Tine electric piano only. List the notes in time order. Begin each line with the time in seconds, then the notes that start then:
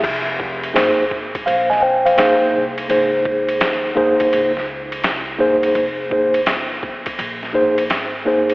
0.73 A#3 D#4 G#4 C5
1.46 C5 F5
1.70 D#5 G#5
1.82 C5 G5
2.06 C5 F5
2.17 A#3 D#4 G#4 C5
2.88 A#3 D#4 G#4 C5
3.95 A#3 D#4 G#4 C5
5.38 A#3 D#4 G#4 C5
6.10 A#3 D#4 G#4 C5
7.53 A#3 D#4 G#4 C5
8.25 A#3 D#4 G#4 C5